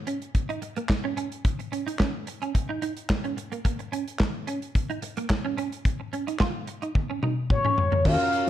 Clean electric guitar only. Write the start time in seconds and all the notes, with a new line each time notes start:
0.07 C#4
0.49 D#4
0.62 muted clean electric guitar stroke
0.77 A#3
0.90 muted clean electric guitar stroke
1.04 C#4
1.17 C#4
1.59 muted clean electric guitar stroke
1.72 C#4
1.87 D#4
1.99 C#4
2.27 muted clean electric guitar stroke
2.42 C#4
2.55 muted clean electric guitar stroke
2.69 D#4
2.82 D#4
3.24 C#4
3.37 muted clean electric guitar stroke
3.52 A#3
3.65 A#3
3.79 muted clean electric guitar stroke
3.92 C#4
4.47 C#4
4.90 D#4
5.02 muted clean electric guitar stroke
5.17 A#3
5.30 muted clean electric guitar stroke
5.45 C#4
5.57 C#4
6.00 muted clean electric guitar stroke
6.13 C#4
6.27 D#4
6.40 F4
6.68 muted clean electric guitar stroke
6.82 D#4
6.95 muted clean electric guitar stroke
7.10 C#4
7.23 D#4
7.65 C#4
7.78 muted clean electric guitar stroke
7.92 A#3